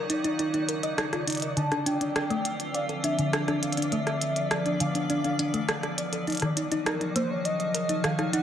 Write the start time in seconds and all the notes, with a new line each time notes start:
Already playing: C#3 D#3 F#3 D#4 D5
0.10 D#4, closed hi-hat
0.24 D#4, closed hi-hat
0.39 D#4, closed hi-hat
0.54 D#4, closed hi-hat
0.69 A#4, closed hi-hat
0.83 D#5, closed hi-hat
0.98 D#4, cross-stick, closed hi-hat
1.13 F4, cross-stick, closed hi-hat
1.27 D#4, closed hi-hat
1.30 closed hi-hat
1.32 closed hi-hat
1.35 closed hi-hat
1.37 closed hi-hat
1.40 D#5, closed hi-hat
1.42 closed hi-hat
1.57 D3 E3 F3 C4 A5, closed hi-hat
1.72 D4, cross-stick, closed hi-hat
1.86 D4 G5, closed hi-hat
2.01 D4, closed hi-hat
2.16 D4, cross-stick, closed hi-hat
2.30 A3, closed hi-hat
2.45 closed hi-hat
2.60 closed hi-hat
2.74 D5 F5, closed hi-hat
2.89 A4, closed hi-hat
3.04 D4 E5, closed hi-hat
3.19 D3, closed hi-hat
3.33 D4 E5, cross-stick, closed hi-hat
3.48 D4, cross-stick, closed hi-hat
3.63 D4 F5, closed hi-hat
3.73 closed hi-hat
3.77 D4, closed hi-hat
3.82 closed hi-hat
3.92 A3 B3 E5, closed hi-hat
4.07 cross-stick, closed hi-hat
4.21 closed hi-hat
4.36 D5, closed hi-hat
4.51 A4 D5, cross-stick, closed hi-hat
4.66 D4, closed hi-hat
4.80 D3 F5, closed hi-hat
4.95 D4, closed hi-hat
5.10 D4, closed hi-hat
5.24 D4, closed hi-hat
5.39 D4, closed hi-hat
5.54 A3, closed hi-hat
5.69 cross-stick, closed hi-hat
5.83 cross-stick, closed hi-hat
5.98 D5, closed hi-hat
6.13 A4, closed hi-hat
6.27 C#3 D#3 F3 F#3 D#4, closed hi-hat
6.30 closed hi-hat
6.32 closed hi-hat
6.35 closed hi-hat
6.37 closed hi-hat
6.40 D#3, cross-stick, closed hi-hat
6.42 closed hi-hat
6.57 D#4, closed hi-hat
6.72 D#4, closed hi-hat
6.86 D#4 A#4, cross-stick, closed hi-hat
7.01 D#4, closed hi-hat
7.16 A#3 C5, closed hi-hat
7.30 C#5
7.45 D#5, closed hi-hat
7.60 D#5, closed hi-hat
7.74 A#4 D#5, closed hi-hat
7.89 D#4, closed hi-hat
8.04 D#3 F5, cross-stick, closed hi-hat
8.19 D#4, cross-stick, closed hi-hat
8.33 D#4 F#5, closed hi-hat